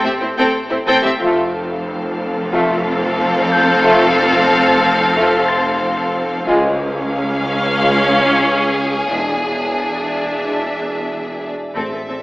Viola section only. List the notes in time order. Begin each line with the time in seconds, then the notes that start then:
0.04 C4
0.21 C4
0.38 C4
0.70 C4
0.87 C4
1.04 C4
1.21 C4
6.48 C#4
9.11 D4
11.74 C4
11.92 C4
12.08 C4